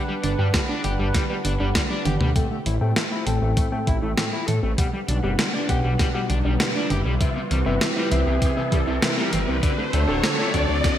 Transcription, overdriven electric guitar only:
0.08 G3
0.24 D4
0.39 G3
0.54 G3
0.69 D4
0.84 G4
0.99 G3
1.15 G3
1.30 G3
1.45 D4
1.60 G3
1.75 G3
1.90 D4
2.05 G4
2.21 G3
2.36 A3
2.51 A3
2.66 E4
2.81 A3
2.96 A3
3.12 E4
3.27 A4
3.42 A3
3.57 A3
3.72 A3
3.87 E4
4.03 A3
4.18 A3
4.33 E4
4.48 A4
4.63 A3
4.78 G3
4.93 G3
5.08 D4
5.24 G3
5.39 G3
5.54 D4
5.69 G4
5.84 G3
6.00 G3
6.15 G3
6.30 D4
6.45 G3
6.60 G3
6.75 D4
6.91 G4
7.06 G3
7.21 C3
7.36 C3
7.51 G3
7.66 C3
7.81 C3
7.97 G3
8.12 C4
8.27 C3
8.42 C3
8.57 C3
8.72 G3
8.87 C3
9.03 C3
9.18 G3
9.33 C4
9.48 C3
9.63 D3
9.78 D3
9.93 A3
10.09 D3
10.24 D3
10.39 A3
10.54 D4
10.69 D3
10.84 D3

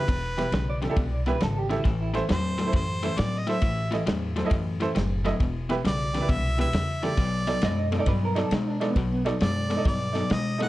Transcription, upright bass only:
0.09 E1
0.52 B1
0.97 C2
1.42 G#1
1.85 A1
2.30 E2
2.73 F#2
3.19 A2
3.63 A1
4.07 E2
4.51 F#2
4.96 F#1
5.40 E1
5.84 B1
6.29 C2
6.73 E2
7.18 B1
7.63 F#2
8.07 G2
8.52 B2
8.96 B1
9.42 F#2
9.86 G2
10.31 B2

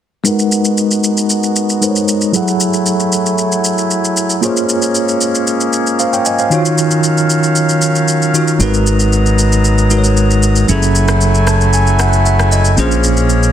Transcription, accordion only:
0.25 G#3 B3 F#4 A#5
2.34 F#3 A3 E4 G#5
4.43 G#3 A#3 C#4
6.51 D#3 F#3 F5
8.60 G#3 B3 A#5
10.69 F#3 A3 E4 G#5
12.78 G#3 A#3 C#4

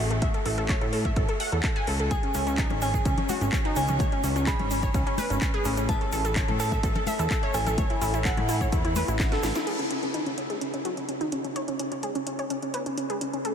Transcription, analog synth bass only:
0.00 A1
0.46 A1
0.81 A2
1.16 A1
1.52 E2
1.87 C#2
2.35 C#2
2.70 G#1
3.05 C#2
3.41 G#1
3.76 C#2
4.24 C#2
4.59 G#1
4.94 C#2
5.30 G#1
5.65 A1
6.12 A1
6.48 A2
6.83 A1
7.19 E2
7.54 A1
8.01 A1
8.37 A2
8.72 E2
9.08 A1
9.43 A1

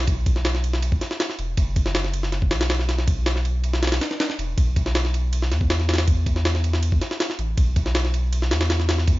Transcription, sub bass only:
Already playing: B1
1.39 E1
1.57 F#1
2.51 B1
4.39 E1
4.58 B1
5.51 E2
7.39 A1
7.57 B1
8.51 E2

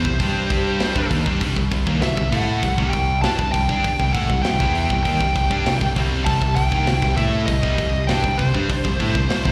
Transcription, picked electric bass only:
0.05 C2
0.20 G2
0.50 G2
0.95 G2
1.11 D#2
1.26 G2
1.41 C2
1.56 C2
1.71 C2
1.87 D#2
2.01 C2
2.17 C2
2.32 A2
2.63 C2
2.78 C2
2.93 C2
3.23 G2
3.39 C2
3.54 C2
3.69 G2
3.84 muted picked electric bass stroke
3.99 C2
4.15 A2
4.29 C2
4.46 C2
4.60 E2
4.90 C2
5.06 D#2
5.20 C2
5.35 C2
5.51 G2
5.66 C2
5.81 C2
5.96 C2
6.26 C2
6.41 C2
6.56 C2
6.72 D#2
6.88 C2
7.02 C2
7.17 A2
7.48 C2
7.63 C2
7.78 C2
8.10 G2
8.24 C2
8.39 C2
8.54 G2
8.70 muted picked electric bass stroke
8.85 C2
9.00 A2
9.15 C2
9.31 C2
9.45 E2

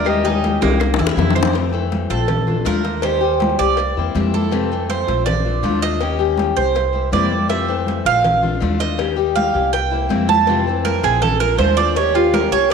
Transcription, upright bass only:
Already playing: D#2
0.62 C2
1.00 E2
1.17 F2
2.10 A#1
2.66 D#2
3.59 C2
3.97 E2
4.15 F2
5.08 A#1
5.63 D#2
6.57 C2
7.12 F2
8.05 A#1
8.62 D#2
9.55 C2
10.10 F2
11.03 A#1
11.58 D#2
12.51 C2

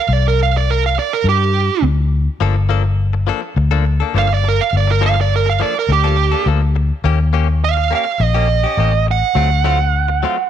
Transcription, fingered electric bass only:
0.08 C2
1.24 G2
1.82 D2
2.40 G1
3.56 D2
4.14 G1
4.73 G1
5.89 D2
6.46 D2
7.04 D#2
8.20 A#1
8.77 A1
9.35 D2

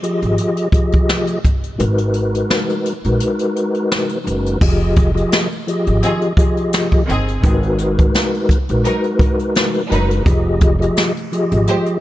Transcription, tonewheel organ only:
0.02 F3 F4 G4 G#4 D#5
0.72 F3 F4 G4 G#4 D#5
1.78 G#3 D#4 F#4 A#4 B4
3.05 G#3 D#4 F#4 A#4 B4
4.24 G#3 D#4 F#4 A#4 B4
4.60 F3 F4 G4 G#4 D#5
5.14 F3 F4 G4 G#4 D#5
5.67 F3 F4 G4 G#4 D#5
6.37 F3 F4 G4 G#4 D#5
7.43 G#3 D#4 F#4 A#4 B4
8.70 G#3 D#4 F#4 A#4 B4
9.88 G#3 D#4 F#4 A#4 B4
10.25 F3 F4 G4 G#4 D#5
10.79 F3 F4 G4 G#4 D#5
11.32 F3 F4 G4 G#4 D#5

